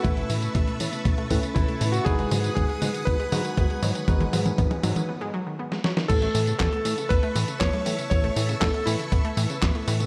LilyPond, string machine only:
\new Staff \with { instrumentName = "String machine" } { \time 4/4 \key a \lydian \tempo 4 = 119 << { <e'' a'' cis'''>1 | <fis'' gis'' dis'''>1~ | <fis'' gis'' dis'''>2 r2 | <e'' a'' cis'''>1~ |
<e'' a'' cis'''>1 | } \\ { b'1~ | b'1~ | b'2 r2 | b'1~ |
b'1 | } >> }